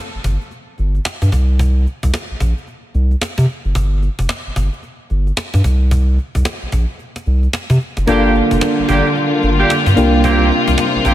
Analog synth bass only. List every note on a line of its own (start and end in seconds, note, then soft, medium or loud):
0.15 0.19 G1 soft
0.24 0.37 G1 medium
0.79 0.99 G1 medium
1.22 1.30 G2 medium
1.32 1.86 C2 loud
2.03 2.11 C2 medium
2.31 2.35 A#1 soft
2.41 2.53 A#1 medium
2.95 3.15 C2 medium
3.38 3.46 C3 loud
3.65 3.73 F#1 medium
3.75 4.09 G1 loud
4.19 4.27 F1 medium
4.47 4.51 G1 soft
4.56 4.69 G1 medium
5.11 5.31 G1 medium
5.54 5.62 G2 medium
5.65 6.18 C2 loud
6.35 6.43 C2 medium
6.62 6.67 A#1 soft
6.73 6.85 A#1 medium
7.27 7.47 C2 medium
7.70 7.78 C3 medium
7.98 8.05 F#1 medium
8.08 8.41 G1 loud
8.51 8.59 F1 medium
8.79 8.83 G1 soft
8.89 9.02 G1 medium
9.43 9.64 G1 medium
9.87 9.94 G2 medium
9.97 10.51 C2 loud
10.68 10.76 C2 medium
10.95 10.99 A#1 soft
11.05 11.14 A#1 medium